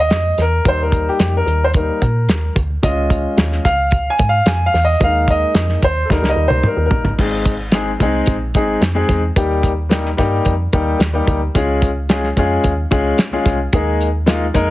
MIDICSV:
0, 0, Header, 1, 4, 480
1, 0, Start_track
1, 0, Tempo, 544465
1, 576, Time_signature, 4, 2, 24, 8
1, 12962, End_track
2, 0, Start_track
2, 0, Title_t, "Grand piano"
2, 0, Program_c, 0, 0
2, 0, Note_on_c, 0, 75, 106
2, 357, Note_off_c, 0, 75, 0
2, 365, Note_on_c, 0, 70, 89
2, 575, Note_off_c, 0, 70, 0
2, 582, Note_on_c, 0, 55, 53
2, 588, Note_on_c, 0, 58, 45
2, 592, Note_on_c, 0, 63, 59
2, 602, Note_on_c, 0, 72, 91
2, 701, Note_off_c, 0, 72, 0
2, 727, Note_on_c, 0, 70, 74
2, 958, Note_off_c, 0, 70, 0
2, 960, Note_on_c, 0, 67, 81
2, 1172, Note_off_c, 0, 67, 0
2, 1207, Note_on_c, 0, 70, 84
2, 1438, Note_off_c, 0, 70, 0
2, 1448, Note_on_c, 0, 72, 79
2, 1492, Note_off_c, 0, 72, 0
2, 1526, Note_off_c, 0, 55, 0
2, 1528, Note_off_c, 0, 58, 0
2, 1534, Note_off_c, 0, 63, 0
2, 1539, Note_on_c, 0, 55, 47
2, 1541, Note_on_c, 0, 58, 42
2, 1547, Note_on_c, 0, 63, 51
2, 1556, Note_on_c, 0, 70, 74
2, 1754, Note_off_c, 0, 55, 0
2, 1755, Note_off_c, 0, 58, 0
2, 1758, Note_off_c, 0, 63, 0
2, 2231, Note_off_c, 0, 70, 0
2, 2491, Note_on_c, 0, 56, 52
2, 2502, Note_on_c, 0, 61, 48
2, 2502, Note_on_c, 0, 75, 84
2, 2504, Note_on_c, 0, 65, 61
2, 3179, Note_off_c, 0, 56, 0
2, 3184, Note_off_c, 0, 61, 0
2, 3185, Note_off_c, 0, 65, 0
2, 3217, Note_on_c, 0, 77, 105
2, 3241, Note_off_c, 0, 75, 0
2, 3616, Note_on_c, 0, 80, 101
2, 3628, Note_off_c, 0, 77, 0
2, 3781, Note_off_c, 0, 80, 0
2, 3783, Note_on_c, 0, 77, 102
2, 3944, Note_off_c, 0, 77, 0
2, 3944, Note_on_c, 0, 80, 91
2, 4105, Note_off_c, 0, 80, 0
2, 4110, Note_on_c, 0, 77, 96
2, 4268, Note_off_c, 0, 77, 0
2, 4272, Note_on_c, 0, 75, 93
2, 4428, Note_off_c, 0, 75, 0
2, 4431, Note_on_c, 0, 56, 51
2, 4437, Note_on_c, 0, 58, 49
2, 4441, Note_on_c, 0, 63, 59
2, 4441, Note_on_c, 0, 77, 98
2, 4675, Note_off_c, 0, 77, 0
2, 4676, Note_on_c, 0, 75, 93
2, 5108, Note_off_c, 0, 56, 0
2, 5111, Note_off_c, 0, 58, 0
2, 5113, Note_off_c, 0, 63, 0
2, 5113, Note_off_c, 0, 75, 0
2, 5151, Note_on_c, 0, 72, 88
2, 5336, Note_on_c, 0, 69, 59
2, 5349, Note_off_c, 0, 72, 0
2, 5372, Note_on_c, 0, 55, 57
2, 5376, Note_off_c, 0, 69, 0
2, 5377, Note_on_c, 0, 58, 52
2, 5383, Note_on_c, 0, 63, 62
2, 5390, Note_on_c, 0, 70, 80
2, 5532, Note_off_c, 0, 70, 0
2, 5549, Note_on_c, 0, 75, 83
2, 5692, Note_off_c, 0, 75, 0
2, 5712, Note_on_c, 0, 72, 81
2, 5869, Note_off_c, 0, 72, 0
2, 5877, Note_on_c, 0, 70, 68
2, 6016, Note_off_c, 0, 70, 0
2, 6049, Note_on_c, 0, 70, 70
2, 6257, Note_off_c, 0, 70, 0
2, 6299, Note_off_c, 0, 55, 0
2, 6301, Note_off_c, 0, 58, 0
2, 6304, Note_off_c, 0, 63, 0
2, 6338, Note_on_c, 0, 56, 71
2, 6344, Note_on_c, 0, 60, 62
2, 6350, Note_on_c, 0, 63, 63
2, 6354, Note_on_c, 0, 68, 76
2, 6631, Note_off_c, 0, 56, 0
2, 6634, Note_off_c, 0, 60, 0
2, 6637, Note_off_c, 0, 63, 0
2, 6639, Note_off_c, 0, 68, 0
2, 6819, Note_on_c, 0, 56, 83
2, 6820, Note_on_c, 0, 60, 69
2, 6827, Note_on_c, 0, 63, 72
2, 6827, Note_on_c, 0, 68, 90
2, 6964, Note_off_c, 0, 56, 0
2, 6965, Note_off_c, 0, 60, 0
2, 6968, Note_off_c, 0, 63, 0
2, 6968, Note_off_c, 0, 68, 0
2, 7062, Note_on_c, 0, 56, 87
2, 7065, Note_on_c, 0, 60, 83
2, 7071, Note_on_c, 0, 63, 83
2, 7074, Note_on_c, 0, 68, 93
2, 7353, Note_off_c, 0, 56, 0
2, 7354, Note_off_c, 0, 60, 0
2, 7358, Note_off_c, 0, 63, 0
2, 7359, Note_off_c, 0, 68, 0
2, 7535, Note_on_c, 0, 56, 81
2, 7538, Note_on_c, 0, 60, 78
2, 7545, Note_on_c, 0, 63, 78
2, 7551, Note_on_c, 0, 68, 92
2, 7756, Note_off_c, 0, 56, 0
2, 7758, Note_off_c, 0, 60, 0
2, 7761, Note_off_c, 0, 63, 0
2, 7764, Note_off_c, 0, 68, 0
2, 7887, Note_on_c, 0, 56, 85
2, 7892, Note_on_c, 0, 60, 77
2, 7897, Note_on_c, 0, 63, 75
2, 7899, Note_on_c, 0, 68, 93
2, 8112, Note_off_c, 0, 56, 0
2, 8115, Note_off_c, 0, 60, 0
2, 8117, Note_off_c, 0, 63, 0
2, 8118, Note_off_c, 0, 68, 0
2, 8252, Note_on_c, 0, 55, 80
2, 8254, Note_on_c, 0, 58, 74
2, 8259, Note_on_c, 0, 63, 69
2, 8263, Note_on_c, 0, 67, 92
2, 8549, Note_off_c, 0, 55, 0
2, 8549, Note_off_c, 0, 58, 0
2, 8552, Note_off_c, 0, 63, 0
2, 8554, Note_off_c, 0, 67, 0
2, 8721, Note_on_c, 0, 55, 81
2, 8728, Note_on_c, 0, 58, 71
2, 8734, Note_on_c, 0, 63, 74
2, 8735, Note_on_c, 0, 67, 85
2, 8876, Note_off_c, 0, 55, 0
2, 8880, Note_off_c, 0, 58, 0
2, 8882, Note_off_c, 0, 63, 0
2, 8883, Note_off_c, 0, 67, 0
2, 8968, Note_on_c, 0, 55, 92
2, 8975, Note_on_c, 0, 58, 81
2, 8980, Note_on_c, 0, 63, 85
2, 8982, Note_on_c, 0, 67, 92
2, 9267, Note_off_c, 0, 55, 0
2, 9270, Note_off_c, 0, 58, 0
2, 9273, Note_off_c, 0, 63, 0
2, 9274, Note_off_c, 0, 67, 0
2, 9459, Note_on_c, 0, 55, 85
2, 9460, Note_on_c, 0, 58, 81
2, 9467, Note_on_c, 0, 63, 79
2, 9468, Note_on_c, 0, 67, 90
2, 9679, Note_off_c, 0, 55, 0
2, 9679, Note_off_c, 0, 58, 0
2, 9683, Note_off_c, 0, 63, 0
2, 9684, Note_off_c, 0, 67, 0
2, 9815, Note_on_c, 0, 55, 80
2, 9819, Note_on_c, 0, 58, 78
2, 9823, Note_on_c, 0, 63, 72
2, 9829, Note_on_c, 0, 67, 86
2, 10037, Note_off_c, 0, 55, 0
2, 10039, Note_off_c, 0, 58, 0
2, 10041, Note_off_c, 0, 63, 0
2, 10044, Note_off_c, 0, 67, 0
2, 10183, Note_on_c, 0, 56, 80
2, 10187, Note_on_c, 0, 61, 79
2, 10191, Note_on_c, 0, 65, 76
2, 10195, Note_on_c, 0, 68, 93
2, 10475, Note_off_c, 0, 56, 0
2, 10477, Note_off_c, 0, 61, 0
2, 10479, Note_off_c, 0, 65, 0
2, 10481, Note_off_c, 0, 68, 0
2, 10661, Note_on_c, 0, 56, 81
2, 10663, Note_on_c, 0, 61, 73
2, 10666, Note_on_c, 0, 65, 72
2, 10674, Note_on_c, 0, 68, 92
2, 10807, Note_off_c, 0, 56, 0
2, 10808, Note_off_c, 0, 61, 0
2, 10810, Note_off_c, 0, 65, 0
2, 10814, Note_off_c, 0, 68, 0
2, 10911, Note_on_c, 0, 56, 87
2, 10917, Note_on_c, 0, 61, 82
2, 10919, Note_on_c, 0, 65, 83
2, 10924, Note_on_c, 0, 68, 97
2, 11199, Note_off_c, 0, 56, 0
2, 11202, Note_off_c, 0, 61, 0
2, 11204, Note_off_c, 0, 65, 0
2, 11206, Note_off_c, 0, 68, 0
2, 11380, Note_on_c, 0, 56, 90
2, 11381, Note_on_c, 0, 61, 85
2, 11386, Note_on_c, 0, 65, 83
2, 11389, Note_on_c, 0, 68, 100
2, 11601, Note_off_c, 0, 56, 0
2, 11601, Note_off_c, 0, 61, 0
2, 11604, Note_off_c, 0, 65, 0
2, 11605, Note_off_c, 0, 68, 0
2, 11748, Note_on_c, 0, 56, 84
2, 11748, Note_on_c, 0, 61, 78
2, 11756, Note_on_c, 0, 65, 81
2, 11756, Note_on_c, 0, 68, 87
2, 11965, Note_off_c, 0, 56, 0
2, 11965, Note_off_c, 0, 61, 0
2, 11969, Note_off_c, 0, 65, 0
2, 11969, Note_off_c, 0, 68, 0
2, 12103, Note_on_c, 0, 56, 78
2, 12107, Note_on_c, 0, 58, 80
2, 12112, Note_on_c, 0, 68, 96
2, 12114, Note_on_c, 0, 63, 75
2, 12396, Note_off_c, 0, 56, 0
2, 12398, Note_off_c, 0, 58, 0
2, 12400, Note_off_c, 0, 68, 0
2, 12401, Note_off_c, 0, 63, 0
2, 12573, Note_on_c, 0, 56, 82
2, 12576, Note_on_c, 0, 58, 70
2, 12583, Note_on_c, 0, 63, 78
2, 12588, Note_on_c, 0, 65, 93
2, 12724, Note_off_c, 0, 56, 0
2, 12726, Note_off_c, 0, 58, 0
2, 12729, Note_off_c, 0, 63, 0
2, 12731, Note_off_c, 0, 65, 0
2, 12819, Note_on_c, 0, 56, 92
2, 12823, Note_on_c, 0, 58, 80
2, 12827, Note_on_c, 0, 63, 86
2, 12827, Note_on_c, 0, 75, 68
2, 12832, Note_on_c, 0, 70, 104
2, 12936, Note_off_c, 0, 75, 0
2, 12962, Note_off_c, 0, 56, 0
2, 12962, Note_off_c, 0, 58, 0
2, 12962, Note_off_c, 0, 63, 0
2, 12962, Note_off_c, 0, 70, 0
2, 12962, End_track
3, 0, Start_track
3, 0, Title_t, "FM bass"
3, 0, Program_c, 1, 39
3, 0, Note_on_c, 1, 39, 93
3, 96, Note_on_c, 1, 41, 105
3, 109, Note_off_c, 1, 39, 0
3, 288, Note_off_c, 1, 41, 0
3, 337, Note_on_c, 1, 40, 101
3, 529, Note_off_c, 1, 40, 0
3, 574, Note_on_c, 1, 39, 102
3, 960, Note_off_c, 1, 39, 0
3, 1056, Note_on_c, 1, 41, 97
3, 1249, Note_off_c, 1, 41, 0
3, 1290, Note_on_c, 1, 39, 92
3, 1678, Note_off_c, 1, 39, 0
3, 1777, Note_on_c, 1, 46, 92
3, 2008, Note_on_c, 1, 39, 104
3, 2021, Note_off_c, 1, 46, 0
3, 2204, Note_off_c, 1, 39, 0
3, 2253, Note_on_c, 1, 38, 96
3, 2447, Note_off_c, 1, 38, 0
3, 2492, Note_on_c, 1, 37, 104
3, 2880, Note_off_c, 1, 37, 0
3, 2973, Note_on_c, 1, 39, 89
3, 3167, Note_off_c, 1, 39, 0
3, 3217, Note_on_c, 1, 37, 89
3, 3602, Note_off_c, 1, 37, 0
3, 3696, Note_on_c, 1, 44, 95
3, 3889, Note_off_c, 1, 44, 0
3, 3933, Note_on_c, 1, 41, 94
3, 4127, Note_off_c, 1, 41, 0
3, 4179, Note_on_c, 1, 40, 97
3, 4370, Note_off_c, 1, 40, 0
3, 4411, Note_on_c, 1, 39, 104
3, 4798, Note_off_c, 1, 39, 0
3, 4890, Note_on_c, 1, 41, 96
3, 5085, Note_off_c, 1, 41, 0
3, 5133, Note_on_c, 1, 39, 92
3, 5327, Note_off_c, 1, 39, 0
3, 5375, Note_on_c, 1, 39, 93
3, 5472, Note_off_c, 1, 39, 0
3, 5486, Note_on_c, 1, 37, 93
3, 5586, Note_off_c, 1, 37, 0
3, 5605, Note_on_c, 1, 39, 89
3, 5706, Note_off_c, 1, 39, 0
3, 5732, Note_on_c, 1, 37, 93
3, 5830, Note_off_c, 1, 37, 0
3, 5968, Note_on_c, 1, 39, 95
3, 6067, Note_off_c, 1, 39, 0
3, 6085, Note_on_c, 1, 34, 91
3, 6185, Note_off_c, 1, 34, 0
3, 6209, Note_on_c, 1, 33, 83
3, 6308, Note_off_c, 1, 33, 0
3, 6333, Note_on_c, 1, 32, 107
3, 7019, Note_off_c, 1, 32, 0
3, 7050, Note_on_c, 1, 36, 89
3, 7245, Note_off_c, 1, 36, 0
3, 7288, Note_on_c, 1, 34, 95
3, 7530, Note_on_c, 1, 32, 93
3, 7543, Note_off_c, 1, 34, 0
3, 7725, Note_off_c, 1, 32, 0
3, 7768, Note_on_c, 1, 41, 98
3, 7964, Note_off_c, 1, 41, 0
3, 8009, Note_on_c, 1, 40, 99
3, 8205, Note_off_c, 1, 40, 0
3, 8254, Note_on_c, 1, 39, 101
3, 8941, Note_off_c, 1, 39, 0
3, 8975, Note_on_c, 1, 43, 89
3, 9169, Note_off_c, 1, 43, 0
3, 9217, Note_on_c, 1, 41, 97
3, 9410, Note_off_c, 1, 41, 0
3, 9459, Note_on_c, 1, 39, 91
3, 9652, Note_off_c, 1, 39, 0
3, 9690, Note_on_c, 1, 39, 97
3, 9886, Note_off_c, 1, 39, 0
3, 9937, Note_on_c, 1, 38, 100
3, 10131, Note_off_c, 1, 38, 0
3, 10180, Note_on_c, 1, 37, 109
3, 10865, Note_off_c, 1, 37, 0
3, 10901, Note_on_c, 1, 41, 81
3, 11093, Note_off_c, 1, 41, 0
3, 11142, Note_on_c, 1, 39, 97
3, 11334, Note_off_c, 1, 39, 0
3, 11381, Note_on_c, 1, 37, 88
3, 11574, Note_off_c, 1, 37, 0
3, 11735, Note_on_c, 1, 36, 43
3, 11785, Note_off_c, 1, 36, 0
3, 11861, Note_on_c, 1, 36, 90
3, 12054, Note_off_c, 1, 36, 0
3, 12104, Note_on_c, 1, 39, 97
3, 12788, Note_off_c, 1, 39, 0
3, 12820, Note_on_c, 1, 41, 86
3, 12962, Note_off_c, 1, 41, 0
3, 12962, End_track
4, 0, Start_track
4, 0, Title_t, "Drums"
4, 90, Note_on_c, 9, 42, 86
4, 96, Note_on_c, 9, 38, 112
4, 178, Note_off_c, 9, 42, 0
4, 185, Note_off_c, 9, 38, 0
4, 334, Note_on_c, 9, 42, 61
4, 341, Note_on_c, 9, 38, 33
4, 422, Note_off_c, 9, 42, 0
4, 429, Note_off_c, 9, 38, 0
4, 576, Note_on_c, 9, 36, 99
4, 576, Note_on_c, 9, 42, 87
4, 664, Note_off_c, 9, 36, 0
4, 664, Note_off_c, 9, 42, 0
4, 812, Note_on_c, 9, 36, 83
4, 819, Note_on_c, 9, 42, 66
4, 901, Note_off_c, 9, 36, 0
4, 907, Note_off_c, 9, 42, 0
4, 1053, Note_on_c, 9, 42, 89
4, 1056, Note_on_c, 9, 38, 95
4, 1141, Note_off_c, 9, 42, 0
4, 1144, Note_off_c, 9, 38, 0
4, 1301, Note_on_c, 9, 42, 65
4, 1390, Note_off_c, 9, 42, 0
4, 1530, Note_on_c, 9, 42, 78
4, 1537, Note_on_c, 9, 36, 93
4, 1618, Note_off_c, 9, 42, 0
4, 1625, Note_off_c, 9, 36, 0
4, 1778, Note_on_c, 9, 42, 63
4, 1779, Note_on_c, 9, 36, 85
4, 1866, Note_off_c, 9, 42, 0
4, 1867, Note_off_c, 9, 36, 0
4, 2016, Note_on_c, 9, 42, 88
4, 2022, Note_on_c, 9, 38, 112
4, 2104, Note_off_c, 9, 42, 0
4, 2110, Note_off_c, 9, 38, 0
4, 2257, Note_on_c, 9, 36, 96
4, 2264, Note_on_c, 9, 42, 63
4, 2345, Note_off_c, 9, 36, 0
4, 2352, Note_off_c, 9, 42, 0
4, 2497, Note_on_c, 9, 36, 98
4, 2500, Note_on_c, 9, 42, 85
4, 2586, Note_off_c, 9, 36, 0
4, 2588, Note_off_c, 9, 42, 0
4, 2735, Note_on_c, 9, 36, 91
4, 2743, Note_on_c, 9, 42, 67
4, 2823, Note_off_c, 9, 36, 0
4, 2831, Note_off_c, 9, 42, 0
4, 2977, Note_on_c, 9, 42, 91
4, 2981, Note_on_c, 9, 38, 104
4, 3065, Note_off_c, 9, 42, 0
4, 3069, Note_off_c, 9, 38, 0
4, 3106, Note_on_c, 9, 38, 32
4, 3194, Note_off_c, 9, 38, 0
4, 3218, Note_on_c, 9, 36, 82
4, 3221, Note_on_c, 9, 42, 68
4, 3225, Note_on_c, 9, 38, 34
4, 3306, Note_off_c, 9, 36, 0
4, 3310, Note_off_c, 9, 42, 0
4, 3313, Note_off_c, 9, 38, 0
4, 3447, Note_on_c, 9, 42, 76
4, 3457, Note_on_c, 9, 36, 92
4, 3535, Note_off_c, 9, 42, 0
4, 3545, Note_off_c, 9, 36, 0
4, 3691, Note_on_c, 9, 42, 67
4, 3698, Note_on_c, 9, 36, 98
4, 3779, Note_off_c, 9, 42, 0
4, 3787, Note_off_c, 9, 36, 0
4, 3931, Note_on_c, 9, 42, 94
4, 3937, Note_on_c, 9, 38, 107
4, 4019, Note_off_c, 9, 42, 0
4, 4026, Note_off_c, 9, 38, 0
4, 4177, Note_on_c, 9, 46, 47
4, 4183, Note_on_c, 9, 38, 31
4, 4265, Note_off_c, 9, 46, 0
4, 4272, Note_off_c, 9, 38, 0
4, 4413, Note_on_c, 9, 42, 83
4, 4415, Note_on_c, 9, 36, 100
4, 4501, Note_off_c, 9, 42, 0
4, 4503, Note_off_c, 9, 36, 0
4, 4653, Note_on_c, 9, 36, 84
4, 4654, Note_on_c, 9, 42, 69
4, 4741, Note_off_c, 9, 36, 0
4, 4742, Note_off_c, 9, 42, 0
4, 4889, Note_on_c, 9, 42, 88
4, 4893, Note_on_c, 9, 38, 109
4, 4977, Note_off_c, 9, 42, 0
4, 4981, Note_off_c, 9, 38, 0
4, 5016, Note_on_c, 9, 38, 34
4, 5104, Note_off_c, 9, 38, 0
4, 5135, Note_on_c, 9, 42, 73
4, 5136, Note_on_c, 9, 36, 93
4, 5223, Note_off_c, 9, 42, 0
4, 5224, Note_off_c, 9, 36, 0
4, 5378, Note_on_c, 9, 36, 99
4, 5381, Note_on_c, 9, 38, 59
4, 5467, Note_off_c, 9, 36, 0
4, 5469, Note_off_c, 9, 38, 0
4, 5501, Note_on_c, 9, 38, 57
4, 5590, Note_off_c, 9, 38, 0
4, 5733, Note_on_c, 9, 48, 64
4, 5821, Note_off_c, 9, 48, 0
4, 5849, Note_on_c, 9, 47, 86
4, 5937, Note_off_c, 9, 47, 0
4, 6090, Note_on_c, 9, 43, 97
4, 6178, Note_off_c, 9, 43, 0
4, 6212, Note_on_c, 9, 43, 96
4, 6300, Note_off_c, 9, 43, 0
4, 6333, Note_on_c, 9, 49, 87
4, 6336, Note_on_c, 9, 36, 94
4, 6422, Note_off_c, 9, 49, 0
4, 6424, Note_off_c, 9, 36, 0
4, 6572, Note_on_c, 9, 36, 87
4, 6574, Note_on_c, 9, 42, 67
4, 6660, Note_off_c, 9, 36, 0
4, 6662, Note_off_c, 9, 42, 0
4, 6803, Note_on_c, 9, 42, 93
4, 6807, Note_on_c, 9, 38, 99
4, 6891, Note_off_c, 9, 42, 0
4, 6895, Note_off_c, 9, 38, 0
4, 7055, Note_on_c, 9, 36, 80
4, 7055, Note_on_c, 9, 42, 65
4, 7143, Note_off_c, 9, 36, 0
4, 7143, Note_off_c, 9, 42, 0
4, 7282, Note_on_c, 9, 42, 81
4, 7294, Note_on_c, 9, 36, 91
4, 7370, Note_off_c, 9, 42, 0
4, 7382, Note_off_c, 9, 36, 0
4, 7530, Note_on_c, 9, 42, 66
4, 7536, Note_on_c, 9, 36, 91
4, 7619, Note_off_c, 9, 42, 0
4, 7624, Note_off_c, 9, 36, 0
4, 7773, Note_on_c, 9, 42, 93
4, 7779, Note_on_c, 9, 38, 105
4, 7861, Note_off_c, 9, 42, 0
4, 7868, Note_off_c, 9, 38, 0
4, 8012, Note_on_c, 9, 42, 60
4, 8013, Note_on_c, 9, 36, 90
4, 8019, Note_on_c, 9, 38, 32
4, 8101, Note_off_c, 9, 42, 0
4, 8102, Note_off_c, 9, 36, 0
4, 8107, Note_off_c, 9, 38, 0
4, 8254, Note_on_c, 9, 36, 109
4, 8254, Note_on_c, 9, 42, 85
4, 8342, Note_off_c, 9, 36, 0
4, 8342, Note_off_c, 9, 42, 0
4, 8493, Note_on_c, 9, 36, 85
4, 8498, Note_on_c, 9, 42, 72
4, 8581, Note_off_c, 9, 36, 0
4, 8586, Note_off_c, 9, 42, 0
4, 8736, Note_on_c, 9, 42, 88
4, 8740, Note_on_c, 9, 38, 104
4, 8824, Note_off_c, 9, 42, 0
4, 8828, Note_off_c, 9, 38, 0
4, 8866, Note_on_c, 9, 38, 33
4, 8954, Note_off_c, 9, 38, 0
4, 8979, Note_on_c, 9, 36, 83
4, 8984, Note_on_c, 9, 42, 62
4, 8987, Note_on_c, 9, 38, 36
4, 9067, Note_off_c, 9, 36, 0
4, 9072, Note_off_c, 9, 42, 0
4, 9076, Note_off_c, 9, 38, 0
4, 9213, Note_on_c, 9, 42, 78
4, 9220, Note_on_c, 9, 36, 90
4, 9301, Note_off_c, 9, 42, 0
4, 9308, Note_off_c, 9, 36, 0
4, 9457, Note_on_c, 9, 42, 65
4, 9462, Note_on_c, 9, 36, 91
4, 9546, Note_off_c, 9, 42, 0
4, 9550, Note_off_c, 9, 36, 0
4, 9700, Note_on_c, 9, 42, 91
4, 9706, Note_on_c, 9, 38, 109
4, 9788, Note_off_c, 9, 42, 0
4, 9794, Note_off_c, 9, 38, 0
4, 9940, Note_on_c, 9, 36, 90
4, 9940, Note_on_c, 9, 42, 67
4, 10028, Note_off_c, 9, 36, 0
4, 10028, Note_off_c, 9, 42, 0
4, 10183, Note_on_c, 9, 36, 100
4, 10187, Note_on_c, 9, 42, 85
4, 10271, Note_off_c, 9, 36, 0
4, 10275, Note_off_c, 9, 42, 0
4, 10421, Note_on_c, 9, 36, 90
4, 10431, Note_on_c, 9, 42, 68
4, 10510, Note_off_c, 9, 36, 0
4, 10519, Note_off_c, 9, 42, 0
4, 10662, Note_on_c, 9, 42, 85
4, 10665, Note_on_c, 9, 38, 106
4, 10750, Note_off_c, 9, 42, 0
4, 10753, Note_off_c, 9, 38, 0
4, 10789, Note_on_c, 9, 38, 29
4, 10877, Note_off_c, 9, 38, 0
4, 10905, Note_on_c, 9, 36, 83
4, 10907, Note_on_c, 9, 42, 68
4, 10993, Note_off_c, 9, 36, 0
4, 10995, Note_off_c, 9, 42, 0
4, 11142, Note_on_c, 9, 42, 77
4, 11147, Note_on_c, 9, 36, 90
4, 11230, Note_off_c, 9, 42, 0
4, 11235, Note_off_c, 9, 36, 0
4, 11384, Note_on_c, 9, 42, 62
4, 11388, Note_on_c, 9, 36, 96
4, 11473, Note_off_c, 9, 42, 0
4, 11476, Note_off_c, 9, 36, 0
4, 11621, Note_on_c, 9, 42, 98
4, 11627, Note_on_c, 9, 38, 105
4, 11709, Note_off_c, 9, 42, 0
4, 11715, Note_off_c, 9, 38, 0
4, 11862, Note_on_c, 9, 42, 67
4, 11864, Note_on_c, 9, 36, 88
4, 11869, Note_on_c, 9, 38, 32
4, 11950, Note_off_c, 9, 42, 0
4, 11952, Note_off_c, 9, 36, 0
4, 11957, Note_off_c, 9, 38, 0
4, 12102, Note_on_c, 9, 42, 91
4, 12105, Note_on_c, 9, 36, 100
4, 12190, Note_off_c, 9, 42, 0
4, 12193, Note_off_c, 9, 36, 0
4, 12347, Note_on_c, 9, 42, 69
4, 12435, Note_off_c, 9, 42, 0
4, 12582, Note_on_c, 9, 42, 88
4, 12585, Note_on_c, 9, 38, 106
4, 12670, Note_off_c, 9, 42, 0
4, 12674, Note_off_c, 9, 38, 0
4, 12824, Note_on_c, 9, 36, 85
4, 12828, Note_on_c, 9, 42, 73
4, 12912, Note_off_c, 9, 36, 0
4, 12916, Note_off_c, 9, 42, 0
4, 12962, End_track
0, 0, End_of_file